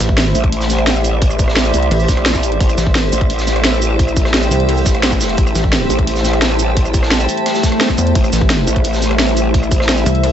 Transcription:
Already playing: A3 E4 G4 C5 D5 E5
0.00 A1, snare, closed hi-hat, shaker
0.09 kick
0.18 snare, closed hi-hat
0.35 A1, closed hi-hat, shaker
0.44 kick, closed hi-hat
0.52 closed hi-hat
0.61 snare, shaker
0.70 snare, closed hi-hat, shaker
0.78 cross-stick, closed hi-hat
0.87 snare, closed hi-hat
0.96 shaker
1.04 closed hi-hat, shaker
1.22 kick, closed hi-hat
1.30 cross-stick, shaker
1.39 kick, closed hi-hat, shaker
1.48 cross-stick, snare
1.56 snare, closed hi-hat
1.65 closed hi-hat, shaker
1.74 C2, closed hi-hat, shaker
1.83 closed hi-hat
1.91 A1, cross-stick, closed hi-hat, open hi-hat
2.00 shaker
2.08 A#1, kick, snare, closed hi-hat, shaker
2.17 cross-stick, closed hi-hat
2.26 snare, closed hi-hat
2.35 kick, snare, shaker
2.43 closed hi-hat, shaker
2.52 closed hi-hat
2.60 A1 E5, kick, closed hi-hat
2.69 cross-stick, closed hi-hat, shaker
2.77 A1, snare, closed hi-hat, shaker
2.83 G5, kick
2.95 snare, closed hi-hat
3.13 A1, closed hi-hat, shaker
3.21 kick, closed hi-hat
3.30 closed hi-hat
3.39 snare, shaker
3.47 snare, closed hi-hat, shaker
3.56 cross-stick, closed hi-hat
3.64 snare, closed hi-hat
3.73 shaker
3.82 closed hi-hat, shaker
3.99 kick, closed hi-hat
4.08 cross-stick, shaker
4.16 kick, closed hi-hat, shaker
4.25 cross-stick, snare
4.34 snare, closed hi-hat
4.43 closed hi-hat, shaker
4.51 C2, closed hi-hat, shaker
4.60 closed hi-hat
4.68 cross-stick, closed hi-hat, open hi-hat
4.77 shaker
4.85 A1, kick, snare, closed hi-hat, shaker
4.95 cross-stick, closed hi-hat
5.03 snare, closed hi-hat
5.12 kick, snare, shaker
5.21 snare, closed hi-hat, shaker
5.29 closed hi-hat
5.37 A1 A5, kick, closed hi-hat
5.47 cross-stick, closed hi-hat, shaker
5.55 A1, snare, closed hi-hat, shaker
5.64 kick
5.72 snare, closed hi-hat
5.90 A1, closed hi-hat, shaker
5.99 kick, closed hi-hat
6.07 closed hi-hat
6.16 snare, shaker
6.24 snare, closed hi-hat, shaker
6.33 cross-stick, closed hi-hat
6.42 snare, closed hi-hat
6.51 shaker
6.59 closed hi-hat, shaker
6.77 kick, closed hi-hat
6.85 cross-stick, shaker
6.94 kick, closed hi-hat, shaker
7.03 cross-stick, snare
7.11 snare, closed hi-hat
7.20 closed hi-hat, shaker
7.29 closed hi-hat, shaker
7.37 closed hi-hat
7.46 cross-stick, snare, closed hi-hat, swell
7.55 snare, closed hi-hat, shaker
7.63 kick, snare, closed hi-hat, shaker
7.72 cross-stick, closed hi-hat
7.81 snare, closed hi-hat
7.89 kick, snare, shaker
7.98 E2, closed hi-hat, shaker
8.07 closed hi-hat
8.15 A1 E5, kick, closed hi-hat
8.24 cross-stick, closed hi-hat, shaker
8.33 A1, snare, closed hi-hat, shaker
8.38 E5, kick
8.49 snare, closed hi-hat
8.67 A1, closed hi-hat, shaker
8.76 kick, closed hi-hat
8.84 closed hi-hat
8.93 snare, shaker
9.02 snare, closed hi-hat, shaker
9.11 cross-stick, closed hi-hat
9.19 snare, closed hi-hat
9.28 shaker
9.37 closed hi-hat, shaker
9.54 kick, closed hi-hat
9.63 cross-stick, shaker
9.71 kick, closed hi-hat, shaker
9.80 cross-stick, snare
9.89 snare, closed hi-hat
9.98 closed hi-hat, shaker
10.06 C2, closed hi-hat, shaker
10.15 closed hi-hat
10.24 cross-stick, closed hi-hat, open hi-hat

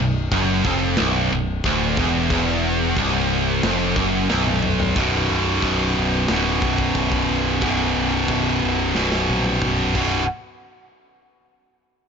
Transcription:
0.00 B0 B1
0.31 F#1 F#2, kick, crash
0.65 F1 F2, kick
0.97 B0 B1, snare, crash
1.32 B0 B1
1.64 D1 D2, kick, crash
1.97 E1 E2, kick
2.30 E1 E2, kick, crash
2.97 C1 C2, kick, crash
3.63 F1 F2, snare, crash
3.96 F#1 F#2, kick
4.30 B0 B1, snare
4.47 high tom
4.63 mid tom
4.80 floor tom
4.96 B0 B1 F#2 B2, kick, china
5.30 B0
5.62 B0, kick, china
5.97 B0
6.28 D1 B1 F#2 B2, snare, china
6.62 B0, kick
6.78 kick
6.95 B0, kick, china
7.12 kick
7.29 B0
7.61 B0 B1 F#2 B2, kick, china
7.96 B0
8.28 B0, kick, china
8.63 B0
8.95 B0 B1 F#2 B2, snare
9.12 snare
9.29 A#1
9.45 high tom
9.62 B0, kick, mid tom
9.95 B0 B1 F#2 B2, kick, crash

